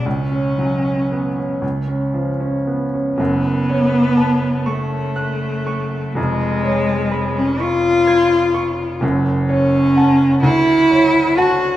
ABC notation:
X:1
M:6/8
L:1/16
Q:3/8=41
K:F#m
V:1 name="Cello"
C6 z6 | B,6 A,6 | G,4- G, C ^E6 | z2 C4 E4 F2 |]
V:2 name="Grand piano"
C,, C F, C B, C C,, C ^E, C B, C | [F,,,F,,]2 c2 a2 c'2 f'2 c'2 | [^E,,,^E,,]2 c2 b2 c'2 g'2 c'2 | [F,,,F,,]2 c2 [fa]2 D,,2 c2 [fa]2 |]